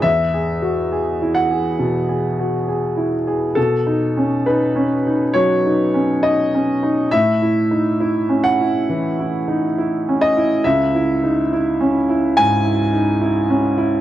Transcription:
\new Staff \with { instrumentName = "Grand piano" } { \time 4/4 \key cis \minor \tempo 4 = 68 << { e''4. fis''2 r8 | a'4 b'4 cis''4 dis''4 | e''4. fis''2 dis''8 | e''2 gis''2 | } \\ { \tuplet 3/2 { e,8 gis'8 fis'8 gis'8 e'8 gis'8 b,8 gis'8 fis'8 gis'8 e'8 gis'8 } | \tuplet 3/2 { b,8 dis'8 cis'8 dis'8 cis'8 dis'8 fis8 dis'8 cis'8 dis'8 cis'8 dis'8 } | \tuplet 3/2 { a,8 e'8 dis'8 e'8 cis'8 e'8 e8 e'8 dis'8 e'8 cis'8 e'8 } | \tuplet 3/2 { cis,8 e'8 dis'8 e'8 cis'8 e'8 gis,8 e'8 dis'8 e'8 cis'8 e'8 } | } >> }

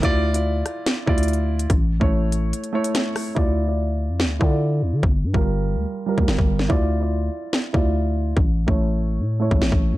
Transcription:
<<
  \new Staff \with { instrumentName = "Grand piano" } { \time 4/4 \key d \minor \tempo 4 = 144 <e' f' d''>8. <e' f' d''>4. r16 <e' f' d''>4. | r8. <a e' cis''>4. r16 <a e' cis''>4~ <a e' cis''>16 r16 | <e' f' d''>8. <e' f' d''>4. r16 <e' f' d''>4. | r8. <g f' bes'>4. r16 <g f' bes'>4~ <g f' bes'>16 r16 |
<e' f' d''>8. <e' f' d''>4. r16 <e' f' d''>4. | r8. <a e' cis''>4. r16 <a e' cis''>4~ <a e' cis''>16 r16 | }
  \new Staff \with { instrumentName = "808-style bass" } { \clef bass \time 4/4 \key d \minor d,4. r4 d,4. | a,,8. a,,4~ a,,16 r2 | d,4.~ d,16 f,16. d,16. d4 e,16 d16 | g,,8 g,16 g,,4 d,16 r8. d,16 g,,16 g,,8. |
d,4. r4 d,4. | a,,8. a,,4~ a,,16 a,8. a,,16 a,,16 a,,8 a,16 | }
  \new DrumStaff \with { instrumentName = "Drums" } \drummode { \time 4/4 <hh bd>8. hh16 r8 <hh ss>8 <hh sn>8 bd16 hh32 hh32 hh32 hh8 r32 hh16 | <hh bd>8. bd16 r8 hh8 hh16 hh8 hh16 <hh sn>8 <hho ss>8 | bd4 r4 sn8 bd8 r4 | bd8. bd16 r4 r8. bd16 sn16 bd8 sn16 |
bd4 r4 sn8 bd8 r4 | bd8. bd16 r4 r8. bd16 sn16 bd8. | }
>>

